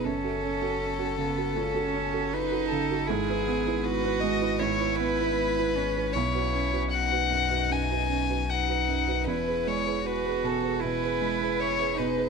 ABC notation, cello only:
X:1
M:4/4
L:1/8
Q:1/4=78
K:E
V:1 name="Cello"
C3 B, C2 D2 | E2 F2 E3 C | E2 D4 D2 | E2 F2 E3 D |]